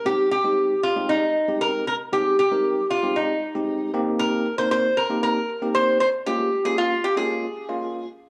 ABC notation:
X:1
M:4/4
L:1/16
Q:1/4=116
K:Ab
V:1 name="Resonator guitar played with a steel bar"
G2 G4 F2 E4 B2 B2 | G2 G4 F2 E6 z2 | B3 c c2 B2 B4 c2 c2 | G3 A F2 G A6- A z2 |]
V:2 name="Tine electric piano"
[A,CEG]2 z [A,CEG]2 z2 [A,CEG]2 z2 [A,CEG]3 z2 | [A,CEA]2 z [A,CEB]2 z2 [A,CEG]2 z2 [A,CEG]3 [B,CEG]2- | [B,CEG]2 z [B,CEB]2 z2 [B,CEG]2 z2 [B,CEG]3 z2 | [A,B,DF]2 z [A,B,DF]2 z2 [A,B,DF]2 z2 [A,B,DF]3 z2 |]